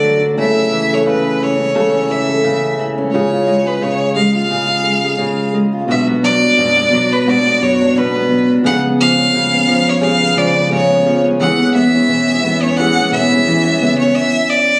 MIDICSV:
0, 0, Header, 1, 5, 480
1, 0, Start_track
1, 0, Tempo, 688863
1, 262, Time_signature, 4, 2, 24, 8
1, 10310, End_track
2, 0, Start_track
2, 0, Title_t, "Violin"
2, 0, Program_c, 0, 40
2, 0, Note_on_c, 0, 74, 84
2, 133, Note_off_c, 0, 74, 0
2, 276, Note_on_c, 0, 76, 94
2, 654, Note_on_c, 0, 73, 81
2, 665, Note_off_c, 0, 76, 0
2, 750, Note_off_c, 0, 73, 0
2, 754, Note_on_c, 0, 71, 83
2, 995, Note_on_c, 0, 73, 83
2, 1005, Note_off_c, 0, 71, 0
2, 1472, Note_on_c, 0, 76, 75
2, 1482, Note_off_c, 0, 73, 0
2, 1947, Note_off_c, 0, 76, 0
2, 2174, Note_on_c, 0, 73, 76
2, 2556, Note_on_c, 0, 71, 73
2, 2567, Note_off_c, 0, 73, 0
2, 2667, Note_on_c, 0, 73, 84
2, 2677, Note_off_c, 0, 71, 0
2, 2895, Note_off_c, 0, 73, 0
2, 2899, Note_on_c, 0, 77, 83
2, 3023, Note_off_c, 0, 77, 0
2, 3032, Note_on_c, 0, 77, 94
2, 3833, Note_off_c, 0, 77, 0
2, 4117, Note_on_c, 0, 76, 83
2, 4222, Note_off_c, 0, 76, 0
2, 4348, Note_on_c, 0, 74, 106
2, 4963, Note_on_c, 0, 71, 87
2, 4974, Note_off_c, 0, 74, 0
2, 5081, Note_on_c, 0, 74, 95
2, 5092, Note_off_c, 0, 71, 0
2, 5312, Note_on_c, 0, 73, 90
2, 5322, Note_off_c, 0, 74, 0
2, 5556, Note_on_c, 0, 71, 94
2, 5567, Note_off_c, 0, 73, 0
2, 5922, Note_off_c, 0, 71, 0
2, 6036, Note_on_c, 0, 78, 103
2, 6141, Note_off_c, 0, 78, 0
2, 6275, Note_on_c, 0, 77, 117
2, 6891, Note_on_c, 0, 73, 93
2, 6902, Note_off_c, 0, 77, 0
2, 6990, Note_on_c, 0, 77, 106
2, 7000, Note_off_c, 0, 73, 0
2, 7232, Note_on_c, 0, 74, 90
2, 7242, Note_off_c, 0, 77, 0
2, 7468, Note_off_c, 0, 74, 0
2, 7474, Note_on_c, 0, 73, 101
2, 7815, Note_off_c, 0, 73, 0
2, 7948, Note_on_c, 0, 78, 99
2, 8170, Note_off_c, 0, 78, 0
2, 8185, Note_on_c, 0, 76, 108
2, 8795, Note_on_c, 0, 73, 86
2, 8806, Note_off_c, 0, 76, 0
2, 8899, Note_on_c, 0, 78, 100
2, 8909, Note_off_c, 0, 73, 0
2, 9142, Note_off_c, 0, 78, 0
2, 9148, Note_on_c, 0, 76, 103
2, 9731, Note_off_c, 0, 76, 0
2, 9748, Note_on_c, 0, 73, 89
2, 9859, Note_on_c, 0, 76, 98
2, 9870, Note_off_c, 0, 73, 0
2, 10103, Note_on_c, 0, 74, 92
2, 10113, Note_off_c, 0, 76, 0
2, 10310, Note_off_c, 0, 74, 0
2, 10310, End_track
3, 0, Start_track
3, 0, Title_t, "Reed electric piano"
3, 0, Program_c, 1, 4
3, 0, Control_c, 1, 64, 127
3, 0, Note_on_c, 1, 57, 41
3, 0, Note_on_c, 1, 62, 43
3, 0, Note_on_c, 1, 66, 37
3, 0, Note_on_c, 1, 74, 47
3, 237, Note_on_c, 1, 49, 63
3, 239, Note_off_c, 1, 57, 0
3, 247, Note_on_c, 1, 57, 59
3, 255, Note_on_c, 1, 61, 53
3, 259, Note_on_c, 1, 64, 56
3, 262, Note_off_c, 1, 62, 0
3, 263, Note_off_c, 1, 66, 0
3, 267, Note_off_c, 1, 74, 0
3, 268, Note_on_c, 1, 73, 70
3, 271, Control_c, 1, 64, 0
3, 376, Control_c, 1, 64, 127
3, 2141, Note_off_c, 1, 49, 0
3, 2147, Note_off_c, 1, 57, 0
3, 2151, Note_off_c, 1, 61, 0
3, 2152, Note_off_c, 1, 64, 0
3, 2157, Note_off_c, 1, 73, 0
3, 2162, Note_on_c, 1, 56, 62
3, 2173, Note_on_c, 1, 61, 53
3, 2179, Note_on_c, 1, 65, 57
3, 2188, Note_on_c, 1, 73, 67
3, 2192, Control_c, 1, 64, 0
3, 2314, Control_c, 1, 64, 127
3, 4065, Note_off_c, 1, 56, 0
3, 4070, Note_off_c, 1, 61, 0
3, 4073, Note_off_c, 1, 65, 0
3, 4078, Note_off_c, 1, 73, 0
3, 4085, Note_on_c, 1, 59, 62
3, 4091, Note_on_c, 1, 62, 53
3, 4105, Note_on_c, 1, 66, 54
3, 4113, Control_c, 1, 64, 0
3, 4113, Note_on_c, 1, 71, 65
3, 4243, Control_c, 1, 64, 127
3, 5987, Note_off_c, 1, 59, 0
3, 5990, Note_off_c, 1, 62, 0
3, 5997, Note_off_c, 1, 66, 0
3, 6001, Note_off_c, 1, 71, 0
3, 6009, Note_on_c, 1, 59, 64
3, 6019, Note_on_c, 1, 53, 55
3, 6029, Note_on_c, 1, 68, 57
3, 6032, Control_c, 1, 64, 0
3, 6040, Note_on_c, 1, 61, 65
3, 6155, Control_c, 1, 64, 127
3, 7669, Note_off_c, 1, 59, 0
3, 7674, Note_off_c, 1, 53, 0
3, 7679, Note_off_c, 1, 68, 0
3, 7685, Note_off_c, 1, 61, 0
3, 7697, Note_on_c, 1, 59, 49
3, 7703, Note_on_c, 1, 65, 43
3, 7707, Note_on_c, 1, 68, 42
3, 7711, Note_on_c, 1, 73, 52
3, 7928, Note_off_c, 1, 59, 0
3, 7937, Note_on_c, 1, 59, 65
3, 7944, Note_off_c, 1, 65, 0
3, 7946, Note_off_c, 1, 68, 0
3, 7948, Note_off_c, 1, 73, 0
3, 7949, Note_on_c, 1, 64, 62
3, 7952, Control_c, 1, 64, 0
3, 7954, Note_on_c, 1, 68, 58
3, 7965, Note_on_c, 1, 73, 69
3, 8084, Control_c, 1, 64, 127
3, 9117, Note_off_c, 1, 59, 0
3, 9123, Note_off_c, 1, 64, 0
3, 9126, Note_off_c, 1, 68, 0
3, 9131, Note_off_c, 1, 73, 0
3, 9138, Note_on_c, 1, 59, 52
3, 9145, Note_on_c, 1, 64, 44
3, 9146, Note_on_c, 1, 68, 43
3, 9152, Note_on_c, 1, 71, 43
3, 9195, Note_on_c, 1, 73, 53
3, 9198, Note_off_c, 1, 71, 0
3, 9862, Note_off_c, 1, 59, 0
3, 9865, Note_off_c, 1, 64, 0
3, 9865, Note_off_c, 1, 68, 0
3, 9874, Control_c, 1, 64, 0
3, 9890, Note_off_c, 1, 73, 0
3, 10310, End_track
4, 0, Start_track
4, 0, Title_t, "Steel-string acoustic guitar"
4, 0, Program_c, 2, 25
4, 0, Note_on_c, 2, 50, 72
4, 0, Note_on_c, 2, 62, 52
4, 0, Note_on_c, 2, 69, 60
4, 20, Note_on_c, 2, 54, 53
4, 149, Note_off_c, 2, 62, 0
4, 157, Note_on_c, 2, 62, 50
4, 259, Note_off_c, 2, 50, 0
4, 261, Note_on_c, 2, 49, 75
4, 262, Note_off_c, 2, 69, 0
4, 264, Note_on_c, 2, 69, 61
4, 314, Note_off_c, 2, 54, 0
4, 316, Note_off_c, 2, 62, 0
4, 402, Note_on_c, 2, 61, 53
4, 503, Note_on_c, 2, 52, 61
4, 619, Note_off_c, 2, 69, 0
4, 627, Note_on_c, 2, 69, 54
4, 729, Note_off_c, 2, 49, 0
4, 738, Note_on_c, 2, 49, 73
4, 978, Note_off_c, 2, 52, 0
4, 986, Note_on_c, 2, 52, 62
4, 1106, Note_off_c, 2, 61, 0
4, 1109, Note_on_c, 2, 61, 49
4, 1213, Note_off_c, 2, 49, 0
4, 1214, Note_off_c, 2, 69, 0
4, 1220, Note_on_c, 2, 49, 80
4, 1224, Note_on_c, 2, 69, 65
4, 1350, Note_off_c, 2, 61, 0
4, 1353, Note_on_c, 2, 61, 52
4, 1453, Note_off_c, 2, 52, 0
4, 1461, Note_on_c, 2, 52, 55
4, 1589, Note_off_c, 2, 69, 0
4, 1597, Note_on_c, 2, 69, 56
4, 1692, Note_off_c, 2, 49, 0
4, 1700, Note_on_c, 2, 49, 76
4, 1935, Note_off_c, 2, 52, 0
4, 1944, Note_on_c, 2, 52, 58
4, 2072, Note_off_c, 2, 61, 0
4, 2075, Note_on_c, 2, 61, 51
4, 2181, Note_off_c, 2, 49, 0
4, 2183, Note_off_c, 2, 69, 0
4, 2190, Note_on_c, 2, 49, 71
4, 2197, Note_on_c, 2, 68, 57
4, 2236, Note_off_c, 2, 52, 0
4, 2315, Note_off_c, 2, 61, 0
4, 2317, Note_on_c, 2, 65, 53
4, 2419, Note_on_c, 2, 56, 60
4, 2540, Note_off_c, 2, 68, 0
4, 2548, Note_on_c, 2, 68, 53
4, 2649, Note_off_c, 2, 49, 0
4, 2658, Note_on_c, 2, 49, 69
4, 2892, Note_off_c, 2, 56, 0
4, 2900, Note_on_c, 2, 56, 63
4, 3026, Note_off_c, 2, 65, 0
4, 3034, Note_on_c, 2, 65, 47
4, 3129, Note_off_c, 2, 49, 0
4, 3135, Note_off_c, 2, 68, 0
4, 3137, Note_on_c, 2, 49, 76
4, 3144, Note_on_c, 2, 68, 63
4, 3258, Note_off_c, 2, 65, 0
4, 3266, Note_on_c, 2, 65, 50
4, 3371, Note_off_c, 2, 56, 0
4, 3379, Note_on_c, 2, 56, 51
4, 3508, Note_off_c, 2, 68, 0
4, 3516, Note_on_c, 2, 68, 55
4, 3604, Note_off_c, 2, 49, 0
4, 3612, Note_on_c, 2, 49, 73
4, 3851, Note_off_c, 2, 56, 0
4, 3860, Note_on_c, 2, 56, 57
4, 3982, Note_off_c, 2, 65, 0
4, 3991, Note_on_c, 2, 65, 47
4, 4094, Note_off_c, 2, 49, 0
4, 4096, Note_on_c, 2, 47, 70
4, 4102, Note_off_c, 2, 68, 0
4, 4105, Note_on_c, 2, 66, 65
4, 4153, Note_off_c, 2, 65, 0
4, 4154, Note_off_c, 2, 56, 0
4, 4230, Note_on_c, 2, 59, 55
4, 4342, Note_on_c, 2, 54, 60
4, 4479, Note_on_c, 2, 62, 52
4, 4580, Note_off_c, 2, 47, 0
4, 4591, Note_on_c, 2, 47, 76
4, 4713, Note_off_c, 2, 59, 0
4, 4715, Note_on_c, 2, 59, 50
4, 4816, Note_off_c, 2, 54, 0
4, 4825, Note_on_c, 2, 54, 64
4, 4945, Note_off_c, 2, 62, 0
4, 4953, Note_on_c, 2, 62, 51
4, 5058, Note_off_c, 2, 47, 0
4, 5064, Note_off_c, 2, 66, 0
4, 5066, Note_on_c, 2, 47, 82
4, 5073, Note_on_c, 2, 66, 65
4, 5202, Note_off_c, 2, 59, 0
4, 5205, Note_on_c, 2, 59, 54
4, 5302, Note_off_c, 2, 54, 0
4, 5310, Note_on_c, 2, 54, 58
4, 5434, Note_off_c, 2, 62, 0
4, 5446, Note_on_c, 2, 62, 50
4, 5541, Note_off_c, 2, 47, 0
4, 5549, Note_on_c, 2, 47, 74
4, 5676, Note_off_c, 2, 59, 0
4, 5679, Note_on_c, 2, 59, 55
4, 5778, Note_off_c, 2, 54, 0
4, 5786, Note_on_c, 2, 54, 60
4, 5913, Note_off_c, 2, 62, 0
4, 5921, Note_on_c, 2, 62, 52
4, 6020, Note_off_c, 2, 47, 0
4, 6022, Note_on_c, 2, 49, 82
4, 6028, Note_off_c, 2, 66, 0
4, 6030, Note_on_c, 2, 68, 67
4, 6077, Note_off_c, 2, 54, 0
4, 6079, Note_off_c, 2, 62, 0
4, 6158, Note_off_c, 2, 59, 0
4, 6161, Note_on_c, 2, 59, 53
4, 6273, Note_on_c, 2, 53, 64
4, 6399, Note_on_c, 2, 61, 52
4, 6503, Note_off_c, 2, 49, 0
4, 6510, Note_on_c, 2, 49, 79
4, 6640, Note_off_c, 2, 59, 0
4, 6643, Note_on_c, 2, 59, 53
4, 6733, Note_off_c, 2, 53, 0
4, 6742, Note_on_c, 2, 53, 69
4, 6878, Note_off_c, 2, 61, 0
4, 6881, Note_on_c, 2, 61, 56
4, 6966, Note_off_c, 2, 49, 0
4, 6974, Note_on_c, 2, 49, 78
4, 6977, Note_off_c, 2, 68, 0
4, 6979, Note_on_c, 2, 68, 71
4, 7112, Note_off_c, 2, 59, 0
4, 7115, Note_on_c, 2, 59, 58
4, 7216, Note_off_c, 2, 53, 0
4, 7224, Note_on_c, 2, 53, 61
4, 7360, Note_off_c, 2, 61, 0
4, 7363, Note_on_c, 2, 61, 54
4, 7459, Note_off_c, 2, 49, 0
4, 7469, Note_on_c, 2, 49, 80
4, 7595, Note_off_c, 2, 59, 0
4, 7598, Note_on_c, 2, 59, 60
4, 7700, Note_off_c, 2, 53, 0
4, 7708, Note_on_c, 2, 53, 64
4, 7829, Note_off_c, 2, 61, 0
4, 7832, Note_on_c, 2, 61, 54
4, 7941, Note_off_c, 2, 53, 0
4, 7944, Note_off_c, 2, 68, 0
4, 7944, Note_on_c, 2, 52, 78
4, 7947, Note_on_c, 2, 68, 66
4, 7999, Note_off_c, 2, 49, 0
4, 8071, Note_off_c, 2, 59, 0
4, 8074, Note_on_c, 2, 59, 57
4, 8095, Note_off_c, 2, 61, 0
4, 8178, Note_off_c, 2, 59, 0
4, 8186, Note_on_c, 2, 59, 70
4, 8326, Note_on_c, 2, 61, 55
4, 8421, Note_off_c, 2, 52, 0
4, 8430, Note_on_c, 2, 52, 81
4, 8557, Note_off_c, 2, 59, 0
4, 8569, Note_on_c, 2, 59, 52
4, 8658, Note_off_c, 2, 59, 0
4, 8667, Note_on_c, 2, 59, 67
4, 8798, Note_off_c, 2, 61, 0
4, 8801, Note_on_c, 2, 61, 58
4, 8906, Note_off_c, 2, 68, 0
4, 8907, Note_off_c, 2, 52, 0
4, 8915, Note_on_c, 2, 52, 87
4, 8919, Note_on_c, 2, 68, 74
4, 9038, Note_off_c, 2, 59, 0
4, 9050, Note_on_c, 2, 59, 56
4, 9144, Note_off_c, 2, 59, 0
4, 9153, Note_on_c, 2, 59, 58
4, 9278, Note_off_c, 2, 61, 0
4, 9280, Note_on_c, 2, 61, 56
4, 9383, Note_off_c, 2, 52, 0
4, 9391, Note_on_c, 2, 52, 81
4, 9514, Note_off_c, 2, 59, 0
4, 9523, Note_on_c, 2, 59, 56
4, 9624, Note_off_c, 2, 59, 0
4, 9632, Note_on_c, 2, 59, 66
4, 9754, Note_off_c, 2, 61, 0
4, 9757, Note_on_c, 2, 61, 56
4, 9921, Note_off_c, 2, 52, 0
4, 9921, Note_off_c, 2, 59, 0
4, 9925, Note_off_c, 2, 68, 0
4, 10266, Note_off_c, 2, 61, 0
4, 10310, End_track
5, 0, Start_track
5, 0, Title_t, "Fretless electric bass"
5, 0, Program_c, 3, 35
5, 4099, Note_on_c, 3, 35, 96
5, 4494, Note_off_c, 3, 35, 0
5, 4583, Note_on_c, 3, 42, 84
5, 4780, Note_off_c, 3, 42, 0
5, 4824, Note_on_c, 3, 35, 74
5, 5217, Note_off_c, 3, 35, 0
5, 5299, Note_on_c, 3, 42, 67
5, 5497, Note_off_c, 3, 42, 0
5, 5535, Note_on_c, 3, 35, 85
5, 5735, Note_off_c, 3, 35, 0
5, 5775, Note_on_c, 3, 35, 88
5, 5975, Note_off_c, 3, 35, 0
5, 6015, Note_on_c, 3, 37, 107
5, 7192, Note_off_c, 3, 37, 0
5, 7218, Note_on_c, 3, 37, 82
5, 7614, Note_off_c, 3, 37, 0
5, 7944, Note_on_c, 3, 40, 105
5, 8338, Note_off_c, 3, 40, 0
5, 8420, Note_on_c, 3, 47, 91
5, 8619, Note_off_c, 3, 47, 0
5, 8657, Note_on_c, 3, 40, 83
5, 9054, Note_off_c, 3, 40, 0
5, 9140, Note_on_c, 3, 47, 84
5, 9339, Note_off_c, 3, 47, 0
5, 9384, Note_on_c, 3, 40, 86
5, 9581, Note_off_c, 3, 40, 0
5, 9622, Note_on_c, 3, 37, 91
5, 9820, Note_off_c, 3, 37, 0
5, 10310, End_track
0, 0, End_of_file